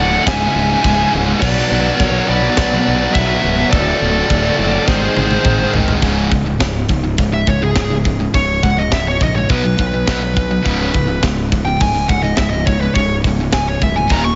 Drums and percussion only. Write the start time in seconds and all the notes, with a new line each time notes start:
0.27 kick, snare, china
0.84 kick, china
1.42 kick, crash, china
2.00 kick, china
2.57 kick, snare, china
3.15 kick, china
3.73 kick, china
4.30 kick, china
4.88 kick, snare
5.17 high tom
5.31 high tom
5.44 kick, mid tom
5.73 floor tom
5.88 floor tom
6.02 kick, open hi-hat
6.31 kick, open hi-hat
6.60 kick, snare, open hi-hat
6.89 kick, open hi-hat
7.18 kick, open hi-hat
7.47 kick, open hi-hat
7.76 kick, snare, open hi-hat
8.05 kick, open hi-hat
8.34 kick, open hi-hat
8.63 kick, open hi-hat
8.92 kick, snare, open hi-hat
9.20 kick, open hi-hat
9.49 kick, open hi-hat
9.78 kick, open hi-hat
10.07 kick, snare, open hi-hat
10.36 kick, open hi-hat
10.66 kick, open hi-hat
10.94 kick, open hi-hat
11.23 kick, snare, open hi-hat
11.52 kick, open hi-hat
11.80 kick, open hi-hat
12.09 kick, open hi-hat
12.37 kick, snare, open hi-hat
12.67 kick, open hi-hat
12.95 kick, open hi-hat
13.24 kick, open hi-hat
13.53 kick, snare, open hi-hat
13.81 kick, open hi-hat
14.09 kick, open hi-hat